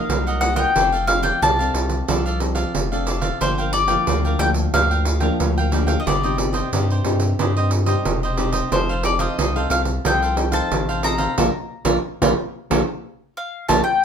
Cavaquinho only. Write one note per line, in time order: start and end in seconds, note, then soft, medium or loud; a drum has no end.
0.00 0.24 A#4 soft
0.00 0.24 D#5 medium
0.27 0.40 A#4 soft
0.27 0.41 D#5 medium
0.27 0.42 F#5 medium
0.41 0.57 F#4 soft
0.41 0.57 A#4 soft
0.41 0.56 D#5 soft
0.41 0.55 F#5 soft
0.56 0.74 A#4 soft
0.56 0.73 D#5 medium
0.56 0.73 F#5 medium
0.75 0.91 D4 soft
0.75 0.91 A4 soft
0.75 0.92 D5 medium
0.75 0.91 F5 medium
0.92 1.07 A4 soft
0.92 1.07 D5 medium
0.92 1.07 F5 medium
1.07 muted cavaquinho stroke soft
1.22 1.40 A4 soft
1.22 1.40 D5 medium
1.22 1.39 F5 medium
1.42 1.57 D4 soft
1.42 1.57 A4 soft
1.42 1.58 D5 soft
1.42 1.58 F5 soft
1.59 2.08 A4 soft
1.59 2.08 D5 medium
1.59 2.07 F5 medium
2.08 2.23 D4 soft
2.08 2.24 A4 soft
2.08 2.24 D5 soft
2.08 2.25 F5 soft
2.26 2.39 A4 soft
2.26 2.40 D5 medium
2.26 2.40 F5 medium
2.40 muted cavaquinho stroke soft
2.55 2.90 A4 soft
2.55 2.89 D5 medium
2.55 2.88 F5 medium
2.92 3.06 A4 soft
2.92 3.07 D5 medium
2.92 3.07 F5 medium
3.06 3.22 D4 soft
3.06 3.23 A4 soft
3.06 3.22 D5 soft
3.06 3.20 F5 soft
3.21 3.39 A4 soft
3.21 3.39 D5 medium
3.21 3.38 F5 medium
3.40 3.56 D4 soft
3.40 3.56 A#4 soft
3.40 3.57 F5 soft
3.40 3.57 G5 soft
3.58 3.72 A#4 soft
3.58 3.73 F5 medium
3.58 3.73 G5 medium
3.73 muted cavaquinho stroke soft
3.88 4.06 A#4 soft
3.88 4.05 F5 medium
3.88 4.04 G5 medium
4.07 4.23 D4 soft
4.07 4.23 A#4 soft
4.07 4.23 F5 soft
4.07 4.23 G5 soft
4.25 4.73 A#4 soft
4.25 4.73 F5 soft
4.25 4.73 G5 medium
4.74 4.89 D4 soft
4.74 4.89 A#4 soft
4.74 4.90 F5 soft
4.74 4.90 G5 soft
4.91 5.05 A#4 soft
4.91 5.05 F5 medium
4.91 5.06 G5 medium
5.06 muted cavaquinho stroke soft
5.20 5.55 A#4 soft
5.20 5.54 F5 medium
5.20 5.54 G5 medium
5.58 5.71 A#4 soft
5.58 5.72 F5 medium
5.58 5.72 G5 medium
5.72 5.88 D4 soft
5.72 5.88 A#4 soft
5.72 5.87 F5 soft
5.72 5.86 G5 soft
5.87 6.05 A#4 soft
5.87 6.04 F5 medium
5.87 6.04 G5 medium
6.06 6.21 D4 soft
6.06 6.22 G4 soft
6.06 6.22 C5 soft
6.06 6.22 D#5 soft
6.23 6.37 G4 medium
6.23 6.38 C5 medium
6.23 6.38 D#5 medium
6.38 muted cavaquinho stroke soft
6.53 6.71 G4 medium
6.53 6.70 C5 medium
6.53 6.70 D#5 medium
6.72 6.88 D4 soft
6.72 6.88 G4 soft
6.72 6.89 C5 soft
6.72 6.89 D#5 soft
6.91 7.39 G4 soft
6.91 7.39 C5 medium
7.39 7.54 D4 soft
7.39 7.55 G4 soft
7.39 7.55 C5 medium
7.39 7.55 D#5 soft
7.57 7.71 G4 soft
7.57 7.71 C5 medium
7.57 7.71 D#5 medium
7.71 muted cavaquinho stroke soft
7.86 8.21 G4 soft
7.86 8.20 C5 medium
7.86 8.20 D#5 medium
8.23 8.37 G4 soft
8.23 8.38 C5 medium
8.23 8.38 D#5 medium
8.37 8.53 D4 soft
8.37 8.54 G4 soft
8.37 8.52 C5 soft
8.37 8.51 D#5 soft
8.53 8.70 G4 soft
8.53 8.70 C5 medium
8.53 8.69 D#5 medium
8.72 8.87 D#4 soft
8.72 8.88 A4 soft
8.72 8.88 C5 soft
8.72 8.88 F5 medium
8.90 9.03 A4 medium
8.90 9.03 C5 medium
8.90 9.04 F5 medium
9.04 muted cavaquinho stroke soft
9.19 9.37 A4 soft
9.19 9.36 C5 medium
9.19 9.36 F5 medium
9.38 9.54 D#4 soft
9.38 9.54 A4 soft
9.38 9.54 C5 soft
9.38 9.55 F5 soft
9.56 10.05 A4 soft
9.56 10.04 C5 soft
9.56 10.04 F5 medium
10.05 10.20 D#4 soft
10.05 10.21 A4 medium
10.05 10.21 C5 soft
10.05 10.21 F5 soft
10.22 10.36 A4 soft
10.22 10.36 C5 medium
10.22 10.36 F5 medium
10.37 muted cavaquinho stroke soft
10.52 10.86 A4 medium
10.52 10.86 C5 medium
10.52 10.85 F5 medium
10.89 11.03 A4 soft
10.89 11.04 C5 medium
10.89 11.04 F5 medium
11.03 11.19 D#4 soft
11.03 11.19 A4 soft
11.03 11.18 C5 medium
11.03 11.17 F5 soft
11.18 11.36 A4 medium
11.18 11.36 C5 medium
11.18 11.35 F5 medium
11.38 11.49 A4 medium
11.38 11.49 A#4 medium
11.38 11.49 D5 medium
11.85 11.97 A4 medium
11.85 11.97 A#4 medium
11.85 11.97 D5 medium
12.22 12.32 A4 medium
12.22 12.32 A#4 medium
12.22 12.32 D5 medium
12.71 12.81 A4 medium
12.71 12.82 A#4 medium
12.71 12.82 D5 medium
13.69 13.80 A4 medium
13.69 13.80 A#4 medium
13.69 13.80 D5 medium